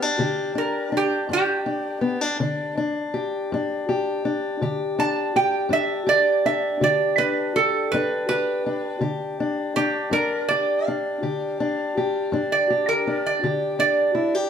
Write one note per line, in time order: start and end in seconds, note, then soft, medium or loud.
0.00 0.54 D4 soft
0.00 0.19 G4 medium
0.00 0.55 F5 medium
0.19 0.86 D3 medium
0.19 3.13 G4 medium
0.55 0.92 D4 medium
0.55 0.94 A#4 medium
0.92 1.29 D4 medium
0.97 1.32 G4 medium
1.29 1.96 G2 medium
1.29 1.66 D4 medium
1.33 2.75 G4 loud
1.66 2.01 D4 medium
2.01 2.21 B3 medium
2.21 2.39 D4 soft
2.40 3.07 D3 medium
2.40 2.77 D4 medium
2.77 3.53 D4 medium
3.14 3.88 G4 medium
3.52 4.18 G2 medium
3.52 4.25 D4 medium
3.89 4.62 G4 medium
4.25 4.98 D4 medium
4.62 5.28 D3 medium
4.62 5.35 G4 medium
4.99 5.70 D4 medium
4.99 5.35 A5 medium
5.36 6.06 G4 medium
5.36 5.71 G5 medium
5.69 6.37 G2 medium
5.69 6.45 D4 medium
5.69 6.08 E5 medium
6.07 6.82 G4 medium
6.07 6.44 D5 loud
6.45 7.18 D4 medium
6.45 6.81 E5 medium
6.81 7.48 D3 medium
6.81 7.55 G4 medium
6.81 7.18 D5 loud
7.18 7.94 D4 medium
7.18 7.54 B4 medium
7.56 8.29 G4 medium
7.56 7.91 A4 medium
7.92 8.59 G2 medium
7.92 8.66 D4 medium
7.92 8.27 B4 medium
8.29 9.01 G4 medium
8.29 9.00 B4 loud
8.66 9.40 D4 medium
9.01 9.68 D3 medium
9.01 10.50 G4 medium
9.40 9.76 D4 medium
9.76 10.12 D4 medium
9.76 10.11 G4 medium
10.11 10.78 G2 medium
10.11 10.86 D4 medium
10.11 10.48 A#4 medium
10.49 11.23 G4 medium
10.49 10.85 D5 loud
10.85 11.59 D4 medium
10.85 12.47 F5 medium
11.23 11.89 D3 medium
11.23 11.97 G4 medium
11.60 12.29 D4 medium
11.97 12.70 G4 medium
12.32 12.99 G2 medium
12.32 13.06 D4 medium
12.52 12.87 D5 medium
12.70 13.43 G4 medium
12.89 13.24 A#4 medium
13.07 13.78 D4 medium
13.26 13.79 D5 medium
13.43 14.09 D3 medium
13.43 14.14 G4 medium
13.79 14.50 D4 medium
13.79 14.50 D5 medium
14.15 14.35 E4 medium
14.35 14.50 G4 medium